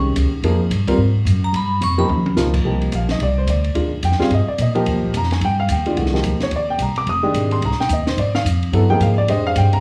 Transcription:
Already playing: C2 D#3 G#3 C#4 G4
0.16 C#2, hi-hat pedal, ride
0.32 muted upright bass stroke
0.42 F2 F3 A#3 D#4 G#4, ride
0.70 G2, hi-hat pedal, ride
0.87 G3 C4 F4 A#4, kick, ride
0.98 G#2
1.25 F#2, hi-hat pedal, ride
1.44 A#5
1.53 G2 B5, ride
1.81 F2 C#6, hi-hat pedal, ride
1.98 F3 A#3 D#4 G4 B5
2.09 D#2, mid tom
2.26 mid tom
2.36 C#2 F3 A#3 D#4 F4, snare, hi-hat pedal
2.54 kick, crash
2.65 C2 F3 A#3 D#4 G4
2.82 ride
2.92 A#1 F5, hi-hat pedal, ride
3.09 D#5, snare, ride
3.19 C2, ride
3.23 D5
3.38 C5
3.47 D2 D5, hi-hat pedal, ride
3.64 ride
3.75 D#2 D#3 G#3 D4 F4, ride
3.93 muted upright bass stroke
4.03 F2 G5, hi-hat pedal, ride
4.12 snare
4.19 G3 C4 F4 G#4 F5, muted upright bass stroke, snare
4.30 G2 D#5, ride
4.47 D5, muted upright bass stroke
4.58 A#2 D#5, hi-hat pedal, ride
4.75 F3 A#3 D#4 G4, ride
4.86 D#2, ride
4.96 C2
5.04 A#1
5.14 F2 A#5, hi-hat pedal, ride
5.23 snare
5.31 G#5, snare, ride
5.41 G2, ride
5.45 G5
5.60 F5
5.69 D#2 G5, hi-hat pedal, ride
5.86 D#3 G#3 D4 F4, ride
5.96 C2 E3 A3 D4 F#4, ride
6.06 snare
6.13 F3 A#3 D#4 G4, snare
6.24 D2, hi-hat pedal, ride
6.40 C#5, muted upright bass stroke, snare, ride
6.51 D#2, ride
6.56 D5
6.70 G5
6.78 C2 A#5, hi-hat pedal, ride
6.95 D6, muted upright bass stroke, ride
7.07 F1 D#6, ride
7.23 D#3 G#3 D4 G4
7.33 G#1, hi-hat pedal, ride
7.51 C6, ride
7.61 C2 A#5, ride
7.72 snare
7.78 G5, muted upright bass stroke, snare
7.89 D#2 D#5, hi-hat pedal, ride
8.06 C5, muted upright bass stroke, snare, ride
8.17 G#2 D5, ride
8.35 F5, snare
8.44 F2, hi-hat pedal, ride
8.63 ride
8.72 G2 F#3 B3 E4 A4, ride
8.90 F3 A#3 D#4 G#4 G5
9.00 G#2 F5, hi-hat pedal, ride
9.18 D5
9.28 F2 G#3 D4 G4 C5 D#5, ride
9.47 F5
9.56 G2 G5, hi-hat pedal, ride
9.73 A#5, ride

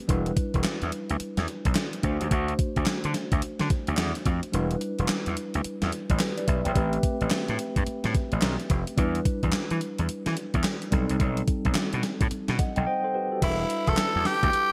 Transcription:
0.08 E1 G3 D4 E4 B4, kick, closed hi-hat
0.26 closed hi-hat
0.37 kick, closed hi-hat
0.54 E1, kick, closed hi-hat
0.64 muted slap bass stroke, snare, clap, closed hi-hat
0.82 E2, closed hi-hat
0.92 closed hi-hat
1.10 D2, closed hi-hat
1.20 muted slap bass stroke, closed hi-hat
1.37 E2, snare, closed hi-hat
1.48 closed hi-hat
1.65 B1, kick, closed hi-hat
1.75 snare, clap, closed hi-hat
1.93 closed hi-hat
2.02 D2 A3 D4 F#4 C5, kick, closed hi-hat
2.21 D#2, closed hi-hat
2.31 D2, kick, closed hi-hat
2.48 closed hi-hat
2.59 kick, closed hi-hat
2.76 D2, kick, closed hi-hat
2.86 muted slap bass stroke, snare, clap, closed hi-hat
3.04 D3, closed hi-hat
3.14 snare, closed hi-hat
3.32 D2, kick, closed hi-hat
3.42 muted slap bass stroke, closed hi-hat
3.59 D3, snare, closed hi-hat
3.70 kick, closed hi-hat
3.87 D2, closed hi-hat
3.97 E2, snare, clap, closed hi-hat
4.15 closed hi-hat
4.26 F2, kick, closed hi-hat
4.43 closed hi-hat
4.52 E1 G3 D4 E4 B4, closed hi-hat
4.71 closed hi-hat
4.81 closed hi-hat
4.99 E1, closed hi-hat
5.08 snare, clap, closed hi-hat
5.26 E2, closed hi-hat
5.37 closed hi-hat
5.54 D2, closed hi-hat
5.64 muted slap bass stroke, closed hi-hat
5.82 E2, snare, closed hi-hat
5.92 closed hi-hat
6.10 A1, kick, closed hi-hat
6.19 G4 B4, snare, clap, closed hi-hat
6.37 B4 D5, closed hi-hat
6.48 B1 E5, kick, closed hi-hat
6.65 A#1 E5 G5, closed hi-hat
6.74 A1 A3 C4 G4 B4, kick, closed hi-hat
6.93 closed hi-hat
7.03 kick, closed hi-hat
7.21 A1, closed hi-hat
7.30 muted slap bass stroke, snare, clap, closed hi-hat
7.48 A2, closed hi-hat
7.59 closed hi-hat
7.76 G2, kick, closed hi-hat
7.87 muted slap bass stroke, closed hi-hat
8.04 A2, snare, closed hi-hat
8.15 kick, closed hi-hat
8.32 A1, closed hi-hat
8.41 B1, snare, clap, closed hi-hat
8.60 closed hi-hat
8.70 F1, kick, closed hi-hat
8.87 closed hi-hat
8.96 E2 G3 D4 E4 B4, kick, closed hi-hat
9.15 closed hi-hat
9.25 kick, closed hi-hat
9.43 E2, kick, closed hi-hat
9.52 muted slap bass stroke, snare, clap, closed hi-hat
9.71 E3, closed hi-hat
9.81 closed hi-hat
9.99 E2, closed hi-hat
10.09 muted slap bass stroke, closed hi-hat
10.26 E3, snare, closed hi-hat
10.37 closed hi-hat
10.54 E2, kick, closed hi-hat
10.64 snare, clap, closed hi-hat
10.82 closed hi-hat
10.91 B1 G3 C4 D#4 A4, kick, closed hi-hat
11.09 C2, closed hi-hat
11.20 B1, kick, closed hi-hat
11.37 closed hi-hat
11.48 kick, closed hi-hat
11.65 B1, kick, closed hi-hat
11.75 snare, clap, closed hi-hat
11.93 B2, closed hi-hat
12.03 snare, closed hi-hat
12.21 A2, kick, closed hi-hat
12.31 muted slap bass stroke, closed hi-hat
12.48 B2, snare, closed hi-hat
12.59 D#5 F#5, kick, closed hi-hat
12.76 B1 D#5 G5, closed hi-hat
12.87 C5 D#5 G5
13.04 A4 C5
13.15 G4 B4
13.32 F#4 A4
13.41 E1 G3 D4 E4 B4, kick, closed hi-hat, crash
13.70 closed hi-hat
13.87 E1 A4, kick, closed hi-hat
13.97 muted slap bass stroke, snare, clap, closed hi-hat
14.16 E2
14.25 G4, snare, open hi-hat
14.43 D2, kick, closed hi-hat
14.53 muted slap bass stroke, closed hi-hat

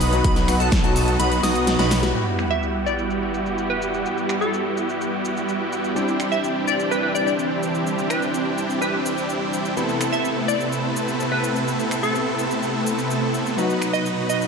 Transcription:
Already playing: B1 F#3 B3 D#4 F#4 B4 F#5 B5 D#6
0.01 open hi-hat, shaker
0.12 F#3 B3 D#4 F#4, closed hi-hat, shaker
0.24 B1 F#3 B3 D#4 F#4 B4 B5, kick, closed hi-hat, shaker
0.36 snare, closed hi-hat, shaker
0.48 F#3 B3 D#4 F#4, finger snap, open hi-hat, shaker
0.60 B1 F#3 B3 D#4 F#4 A4 A5, closed hi-hat, shaker
0.72 kick, snare, closed hi-hat, shaker
0.83 B1 F#3 B3 D#4 F#4 A4 A5, closed hi-hat, shaker
0.96 open hi-hat, shaker
1.08 closed hi-hat, shaker
1.19 B1 F#3 B3 D#4 F#4 B4 B5, closed hi-hat, shaker
1.32 closed hi-hat, shaker
1.43 B1 F#3 B3 D#4 F#4 D#5 D#6, snare, open hi-hat, shaker
1.55 closed hi-hat, shaker
1.67 snare, closed hi-hat, shaker
1.79 B1 F#3 B3 D#4 F#4 B4 B5, snare, closed hi-hat, shaker
1.91 snare, open hi-hat, shaker
2.02 G3 B3 E4 F#4, snare, closed hi-hat, shaker
2.14 G3 B3 E4 F#4 G4 F#5, sub drop, shaker
2.27 shaker
2.39 finger snap, shaker
2.51 E5, shaker
2.63 shaker
2.86 D5, shaker
2.99 shaker
3.10 shaker
3.34 shaker
3.46 shaker
3.58 shaker
3.70 B4
3.82 shaker
3.94 shaker
4.06 shaker
4.18 shaker
4.29 finger snap, shaker
4.41 A4, shaker
4.53 shaker
4.77 shaker
4.89 shaker
5.01 shaker
5.25 shaker
5.37 shaker
5.49 shaker
5.73 shaker
5.84 shaker
5.95 E3 G3 C4 D4 E4 G4, shaker
6.08 shaker
6.20 finger snap, shaker
6.32 E5, shaker
6.44 shaker
6.68 D5, shaker
6.80 shaker
6.91 B4, shaker
7.03 B4
7.15 D5, shaker
7.27 D5, shaker
7.39 shaker
7.63 shaker
7.75 shaker
7.87 shaker
7.99 shaker
8.10 B4, finger snap, shaker
8.22 shaker
8.34 shaker
8.58 shaker
8.70 shaker
8.82 B4, shaker
9.06 shaker
9.18 shaker
9.29 shaker
9.53 shaker
9.65 shaker
9.76 C3 A3 B3 C4 E4 A4 B4, shaker
9.89 shaker
10.01 finger snap, shaker
10.12 E5, shaker
10.25 shaker
10.48 D5, shaker
10.61 shaker
10.72 shaker
10.96 shaker
11.08 shaker
11.20 shaker
11.32 B4
11.44 shaker
11.56 shaker
11.68 shaker
11.80 shaker
11.91 finger snap, shaker
12.03 A4, shaker
12.15 shaker
12.39 shaker
12.51 shaker
12.63 shaker
12.87 shaker
12.99 shaker
13.11 shaker
13.34 shaker
13.46 shaker
13.57 B2 F#3 B3 D#4 F#4 B4, riser, shaker
13.70 shaker
13.82 finger snap, shaker
13.93 D#5, shaker
14.06 shaker
14.29 D#5, shaker
14.42 shaker

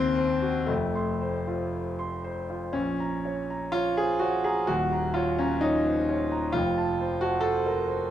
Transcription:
Already playing: D#2 C4 C6
0.17 C5
0.42 F#4
0.67 F1 F2 A3
0.95 C6
1.21 C5
1.47 F4
1.99 C6
2.24 C5
2.50 F4
2.73 A#1 C#4
3.00 A#5
3.25 C#5
3.50 A#5
3.72 F4 C#5
3.97 G#4 C5
4.19 F#4 C#5
4.44 G#4 A#5
4.67 D#1 D#2 F#4
4.93 A#5
5.14 F4 C#5
5.38 C#4 A#5
5.61 D#4 C#5
5.87 C5
6.09 C#5
6.32 A#5
6.52 F1 F2 F4
6.77 A5
7.00 C5
7.21 F#4 A5
7.41 A4 C5
7.66 A#4
7.88 C5

